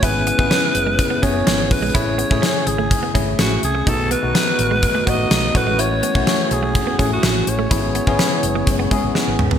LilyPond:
<<
  \new Staff \with { instrumentName = "Alto saxophone" } { \time 4/4 \key cis \minor \tempo 4 = 125 b'2~ b'8 cis''4 b'8 | cis''4. gis'4 r8 fis'8 gis'8 | a'8 b'2 dis''4 b'8 | cis''4. gis'4~ gis'16 fis'8. cis''8~ |
cis''2.~ cis''8 r8 | }
  \new Staff \with { instrumentName = "Tine electric piano" } { \time 4/4 \key cis \minor <b cis' e' gis'>8 r16 <b cis' e' gis'>4~ <b cis' e' gis'>16 r8 <b cis' e' gis'>4 r8 | <a cis' e' gis'>8 r16 <a cis' e' gis'>4~ <a cis' e' gis'>16 r8 <a cis' e' gis'>4 r8 | <a b dis' fis'>8 r16 <a b dis' fis'>4~ <a b dis' fis'>16 r8 <a b dis' fis'>4 <a cis' e' fis'>8~ | <a cis' e' fis'>8 r16 <a cis' e' fis'>4~ <a cis' e' fis'>16 r8 <a cis' e' gis'>4 r8 |
<b cis' e' gis'>8 r16 <b cis' e' gis'>4~ <b cis' e' gis'>16 r8 <b cis' e' gis'>4 r8 | }
  \new Staff \with { instrumentName = "Analog synth pad" } { \time 4/4 \key cis \minor << { <cis e'>1~ | <cis e'>1 | <dis fis'>2.~ <dis fis'>8 <e fis'>8~ | <e fis'>1 |
<cis e'>1 | } \\ { <gis b>1 | <a gis'>1 | b2.~ b8 cis'8~ | cis'1 |
<gis b>1 | } >> }
  \new Staff \with { instrumentName = "Clean electric guitar" } { \time 4/4 \key cis \minor e'16 r16 b16 r16 cis'16 r8 gis16 r16 b16 cis'16 r16 gis16 r8 gis16 | e'16 r16 b16 r16 cis'16 r8 a16 r16 b16 cis'16 r16 a16 r8 a16 | dis'16 r16 b16 r16 b16 r8 gis16 r16 a16 b16 r16 gis16 r8 gis16 | e'16 r16 b16 r16 cis'16 r8 a16 r16 b16 cis'16 r16 a16 r8 a16 |
e'16 r16 b16 r16 cis'16 r8 gis16 r16 b16 gis16 r16 gis16 r8 b16 | }
  \new Staff \with { instrumentName = "Fingered electric bass" } { \clef bass \time 4/4 \key cis \minor gis,,8. gis,,16 r8 fis,,8. r16 fis,,8 gis,,8 ais,,8 | a,,8. a,,16 r8 gis,,8. r16 gis,,8 a,,8 bis,,8 | b,,8. b,,16 r8 a,,8. r16 a,,8 b,,8 a,,8~ | a,,8. b,,16 r8 b,,8. r16 a,,8 a,,8 a,,8 |
gis,,8. gis,,16 r8 fis,,8 fis,,8 r16 gis,,16 r16 gis,,16 gis,8 | }
  \new DrumStaff \with { instrumentName = "Drums" } \drummode { \time 4/4 <hh bd>8 hh16 bd16 <hh sn>8 hh8 <hh bd>8 <hh bd>8 <hh sn>8 <hho bd>8 | <hh bd>8 hh16 bd16 <hh sn>8 hh8 <hh bd>8 <hh bd>8 <hh sn>8 hh8 | <hh bd>8 hh8 <hh sn>8 hh8 <hh bd>8 <hh bd>8 <hh sn>8 <hh bd>8 | hh8 hh16 bd16 <hh sn>8 hh8 <hh bd>8 <hh bd>8 <hh sn>8 hh8 |
<hh bd>8 hh16 bd16 <hh sn>8 hh8 <hh bd>8 <hh bd>8 sn8 toml16 tomfh16 | }
>>